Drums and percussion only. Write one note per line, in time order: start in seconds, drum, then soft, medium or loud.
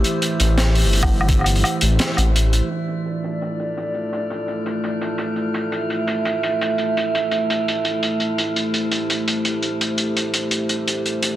0.04 closed hi-hat medium
0.22 closed hi-hat medium
0.40 closed hi-hat medium
0.58 snare loud
0.58 closed hi-hat medium
0.75 open hi-hat medium
0.93 open hi-hat medium
1.03 kick loud
1.03 low woodblock medium
1.21 low woodblock medium
1.29 kick loud
1.29 closed hi-hat medium
1.39 low woodblock soft
1.41 low woodblock soft
1.44 closed hi-hat medium
1.44 low woodblock medium
1.56 open hi-hat medium
1.64 closed hi-hat medium
1.64 low woodblock medium
1.81 closed hi-hat medium
1.99 snare loud
1.99 closed hi-hat medium
2.17 closed hi-hat medium
2.17 low woodblock medium
2.36 closed hi-hat medium
2.53 closed hi-hat medium
2.71 closed hi-hat medium
2.88 closed hi-hat medium
3.06 closed hi-hat medium
3.24 closed hi-hat medium
3.42 closed hi-hat medium
3.60 closed hi-hat medium
3.77 closed hi-hat medium
3.94 closed hi-hat medium
4.13 closed hi-hat medium
4.30 closed hi-hat medium
4.48 closed hi-hat medium
4.66 closed hi-hat medium
4.84 closed hi-hat medium
5.01 closed hi-hat medium
5.18 closed hi-hat medium
5.36 closed hi-hat soft
5.54 closed hi-hat medium
5.72 closed hi-hat medium
5.90 closed hi-hat medium
6.08 closed hi-hat medium
6.25 closed hi-hat medium
6.43 closed hi-hat medium
6.62 closed hi-hat medium
6.78 closed hi-hat soft
6.97 closed hi-hat medium
7.15 closed hi-hat medium
7.31 closed hi-hat medium
7.50 closed hi-hat medium
7.68 closed hi-hat medium
7.85 closed hi-hat medium
8.03 closed hi-hat medium
8.20 closed hi-hat soft
8.38 closed hi-hat medium
8.56 closed hi-hat medium
8.74 closed hi-hat medium
8.92 closed hi-hat medium
9.10 closed hi-hat medium
9.28 closed hi-hat medium
9.45 closed hi-hat medium
9.63 closed hi-hat soft
9.81 closed hi-hat medium
9.98 closed hi-hat medium
10.17 closed hi-hat medium
10.34 closed hi-hat medium
10.51 closed hi-hat medium
10.69 closed hi-hat medium
10.88 closed hi-hat medium
11.06 closed hi-hat soft
11.23 closed hi-hat medium